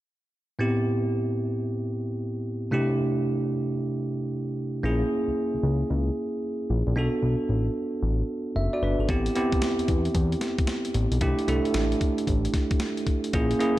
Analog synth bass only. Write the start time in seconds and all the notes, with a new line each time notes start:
4.84 A#1
5.28 C#2
5.54 C#2
5.63 C#2
5.90 C#2
6.70 A#1
6.87 A#1
6.96 B1
7.23 B1
7.49 A1
8.03 A1
8.56 F#1
8.82 G1
8.99 G#1
9.09 A1
9.53 E2
9.79 E2
9.88 E2
10.15 E2
10.94 A1
11.12 B1
11.21 C2
11.48 C2
11.74 A1
12.27 A1
13.34 A#1